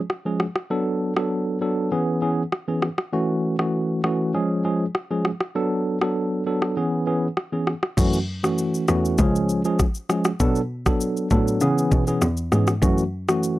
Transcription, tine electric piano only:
0.25 F3 G#3 C#4 G#4
0.70 F#3 B3 D4 A4
1.16 F#3 B3 D4 A4
1.61 F#3 B3 D4 A4
1.92 E3 B3 C#4 G#4
2.22 E3 B3 C#4 G#4
2.68 E3 B3 C#4 G#4
3.13 E3 A3 C#4 F#4
3.59 E3 A3 C#4 F#4
4.04 E3 A3 C#4 F#4
4.34 F3 G#3 C#4 G#4
4.65 F3 G#3 C#4 G#4
5.11 F3 G#3 C#4 G#4
5.55 F#3 B3 D4 A4
6.02 F#3 B3 D4 A4
6.46 F#3 B3 D4 A4
6.77 E3 B3 C#4 G#4
7.07 E3 B3 C#4 G#4
7.52 E3 B3 C#4 G#4
7.97 E3 A3 C#4 F#4
8.44 E3 A3 C#4 F#4
8.88 E3 A3 C#4 F#4
9.18 F3 G#3 C#4 G#4
9.65 F3 G#3 C#4 G#4
10.09 F3 G#3 C#4 G#4
10.40 F#3 B3 D4 A4
10.86 F#3 B3 D4 A4
11.31 F#3 B3 D4 A4
11.61 E3 B3 C#4 G#4
12.07 E3 B3 C#4 G#4
12.52 E3 B3 C#4 G#4
12.82 E3 A3 C#4 F#4
13.28 E3 A3 C#4 F#4

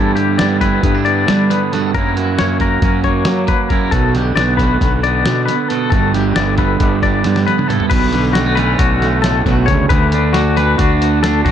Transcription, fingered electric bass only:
Already playing: G2
0.41 G2
0.83 G2
1.30 G3
1.95 F#2
2.41 F#2
2.82 F#2
3.27 F#3
3.92 B1
4.36 B1
4.81 B1
5.27 B2
5.92 G1
6.37 G1
6.80 G1
7.26 G2
7.92 B1
8.80 B1
9.46 B1
9.68 D2
9.90 D2
10.79 D2
11.45 A1

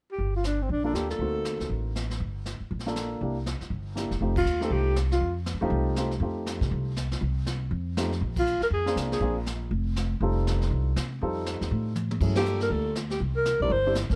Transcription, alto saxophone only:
0.12 G4
0.36 F4
0.46 D4
0.62 C4
0.72 D4
0.85 D4
0.95 G4
1.10 A4
4.38 F4
4.63 A4
4.73 G4
5.13 F4
8.39 F4
8.63 A#4
8.73 G#4
9.13 G#4
12.37 G4
12.62 A#4
12.72 A4
13.11 G4
13.36 A#4
13.62 D5
13.72 C5

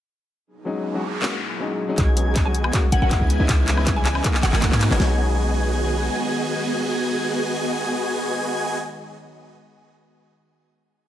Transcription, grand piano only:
0.65 F#3 G#3 C#4 D#4
0.93 F#3 G#3 C#4 F#4
1.21 G#3 A#3 C#4 F#4
1.59 F#3 G#3 C#4 D#4
1.88 F#3 G#3 C#4 D#4
2.16 F#3 G#3 C#4 D#4
2.44 F#3 G#3 C#4 F#4
2.72 G#3 A#3 C#4 F#4
3.10 G#3 B3 D#4 E4
3.39 G#3 B3 D#4 E4
3.67 G#3 B3 D#4 E4
3.95 G#3 B3 D#4 E4
4.23 A#3 B3 D#4 G#4
4.61 A#3 B3 D#4 F#4
4.90 F#3 G#3 C#4 D#4
4.97 F#3 G#3
5.01 C#4 D#4

